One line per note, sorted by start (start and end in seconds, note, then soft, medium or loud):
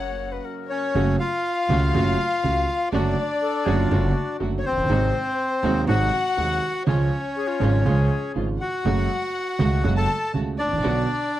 0.00 0.37 F#1 medium
0.00 0.85 F#2 medium
0.00 0.84 C#3 medium
0.00 0.85 F#3 medium
0.00 0.85 A#3 medium
0.00 0.85 C#4 medium
0.00 0.85 F#4 medium
0.00 0.86 F#4 medium
0.00 0.34 C#5 loud
0.00 0.46 F#5 loud
0.32 0.46 B4 medium
0.45 0.95 A#4 medium
0.69 1.17 C#4 medium
0.69 1.15 C#5 medium
0.69 1.16 C#5 medium
0.94 1.15 F#1 medium
0.94 1.16 F#2 medium
0.94 1.16 C#3 medium
0.94 1.16 F#3 medium
0.94 1.15 A3 medium
0.94 1.16 A3 medium
0.94 1.15 C#4 medium
0.94 1.15 F#4 medium
0.94 1.16 F#4 medium
1.19 2.89 F4 medium
1.19 2.88 F5 medium
1.19 2.88 F5 loud
1.69 1.90 C#2 loud
1.69 1.90 C#2 medium
1.69 1.90 C#3 medium
1.69 1.90 F#3 medium
1.69 1.90 A3 medium
1.69 1.90 C#4 medium
1.69 1.90 F#4 medium
1.93 2.15 F#1 loud
1.93 2.15 F#2 medium
1.93 2.15 C#3 medium
1.93 2.15 F#3 medium
1.93 2.14 A3 medium
1.93 2.15 A3 medium
1.93 2.14 C#4 medium
1.93 2.15 F#4 medium
2.43 2.64 C#2 medium
2.43 2.64 C#3 medium
2.43 2.64 F#3 soft
2.43 2.64 A3 medium
2.43 2.64 A3 soft
2.43 2.64 C#4 medium
2.43 2.64 F#4 medium
2.92 3.13 F#1 medium
2.92 3.13 F#2 medium
2.92 3.13 D3 medium
2.92 3.13 F#3 medium
2.92 3.13 A3 medium
2.92 3.13 D4 medium
2.92 4.37 D4 medium
2.92 3.13 F#4 medium
2.92 3.14 F#4 medium
2.92 4.36 D5 medium
2.92 4.37 D5 medium
3.41 3.66 A4 loud
3.65 3.87 F#1 loud
3.65 3.87 F#2 medium
3.65 3.87 D3 medium
3.65 3.87 F#3 loud
3.65 3.87 A3 medium
3.65 3.87 D4 medium
3.65 3.87 F#4 medium
3.65 3.79 G#4 medium
3.77 4.15 F4 medium
3.90 4.12 F#1 loud
3.90 4.12 F#2 medium
3.90 4.12 D3 medium
3.90 4.12 F#3 medium
3.90 4.11 A3 medium
3.90 4.12 A3 medium
3.90 4.11 D4 medium
3.90 4.11 F#4 medium
3.90 4.12 F#4 medium
4.13 4.52 F#4 medium
4.39 4.61 F#1 medium
4.39 4.61 F#2 medium
4.39 4.61 D3 soft
4.39 4.61 F#3 medium
4.39 4.60 A3 medium
4.39 4.61 A3 soft
4.39 4.60 D4 soft
4.39 4.60 F#4 medium
4.39 4.61 F#4 medium
4.58 4.64 C#5 medium
4.58 4.65 C#5 medium
4.65 5.85 C4 medium
4.65 5.84 C5 medium
4.65 5.84 C5 loud
4.71 4.77 F1 medium
4.77 4.83 F#1 medium
4.83 4.89 G1 medium
4.89 5.10 G#1 medium
4.89 5.10 G#2 medium
4.89 5.10 C3 medium
4.89 5.10 F#3 medium
4.89 5.10 G#3 medium
4.89 5.10 C4 medium
4.89 5.11 D#4 medium
4.89 5.10 F#4 medium
5.62 5.84 D#1 medium
5.62 5.84 D#2 loud
5.62 5.84 D#2 medium
5.62 5.84 C3 medium
5.62 5.84 F#3 medium
5.62 5.84 G#3 medium
5.62 5.84 C4 medium
5.62 5.84 D#4 medium
5.62 5.84 F#4 medium
5.87 6.08 G#1 loud
5.87 6.09 G#1 medium
5.87 6.09 G#2 medium
5.87 6.08 C3 medium
5.87 6.09 F#3 medium
5.87 6.08 G#3 medium
5.87 6.09 G#3 medium
5.87 6.09 C4 medium
5.87 6.09 D#4 medium
5.87 6.09 F#4 medium
5.87 6.83 F#4 medium
5.87 6.83 F#5 loud
5.87 6.84 F#5 loud
6.37 6.58 D#1 medium
6.37 6.58 D#2 medium
6.37 6.58 C3 soft
6.37 6.58 F#3 soft
6.37 6.58 G#3 medium
6.37 6.58 G#3 soft
6.37 6.58 C4 medium
6.37 6.58 D#4 medium
6.37 6.58 F#4 medium
6.87 7.08 C#2 medium
6.87 7.08 C#3 loud
6.87 7.08 F3 medium
6.87 7.08 G#3 medium
6.87 7.08 C#4 medium
6.87 8.32 C#4 medium
6.87 7.08 F4 medium
6.87 8.32 C#5 medium
7.36 7.49 G#4 loud
7.47 7.87 F4 loud
7.60 7.81 G#1 medium
7.60 7.82 G#1 loud
7.60 7.82 G#2 medium
7.60 7.81 C#3 medium
7.60 7.82 F3 medium
7.60 7.82 G#3 medium
7.60 7.82 C#4 medium
7.60 7.82 F4 medium
7.85 8.07 C#2 medium
7.85 8.07 C#2 loud
7.85 8.07 C#3 medium
7.85 8.06 F3 medium
7.85 8.06 G#3 medium
7.85 8.07 G#3 medium
7.85 8.06 C#4 medium
7.85 8.06 F4 medium
7.85 8.07 F4 medium
7.85 8.48 G#4 medium
8.35 8.57 G#1 medium
8.35 8.57 G#2 soft
8.35 8.57 C#3 soft
8.35 8.57 F3 soft
8.35 8.56 G#3 medium
8.35 8.57 G#3 soft
8.35 8.56 C#4 soft
8.35 8.56 F4 medium
8.35 8.57 F4 soft
8.60 9.94 F#4 medium
8.60 9.93 F#5 medium
8.60 9.93 F#5 loud
8.84 9.06 F#1 medium
8.84 9.07 F#2 medium
8.84 9.06 C#3 medium
8.84 9.07 F#3 medium
8.84 9.06 G#3 medium
8.84 9.07 G#3 medium
8.84 9.06 A3 medium
8.84 9.07 A3 medium
8.84 9.06 F#4 medium
8.84 9.07 F#4 medium
9.59 9.80 C#2 medium
9.59 9.81 C#2 loud
9.59 9.81 C#3 medium
9.59 9.80 G#3 medium
9.59 9.81 G#3 medium
9.59 9.80 A3 medium
9.59 9.81 A3 medium
9.59 9.81 F#4 medium
9.84 10.06 F#1 loud
9.84 10.05 F#2 medium
9.84 10.05 C#3 medium
9.84 10.05 F#3 medium
9.84 10.05 G#3 medium
9.84 10.05 A3 medium
9.84 10.05 F#4 medium
9.96 10.32 A4 medium
9.96 10.31 A5 medium
9.96 10.32 A5 loud
10.33 10.55 C#2 medium
10.33 10.55 C#3 medium
10.33 10.55 G#3 medium
10.33 10.55 G#3 soft
10.33 10.55 A3 soft
10.33 10.55 F#4 medium
10.58 11.40 D4 medium
10.58 11.40 D5 loud
10.58 11.40 D5 medium
10.65 10.71 G#1 medium
10.72 10.78 A1 medium
10.72 10.77 A1 medium
10.77 10.84 A#1 medium
10.77 10.83 A#1 medium
10.82 11.05 B1 medium
10.82 11.05 B2 medium
10.82 11.04 D3 medium
10.82 11.05 F#3 medium
10.82 11.04 B3 medium
10.82 11.05 B3 medium
10.82 11.04 D4 medium
10.82 11.04 F#4 medium
10.82 11.05 F#4 medium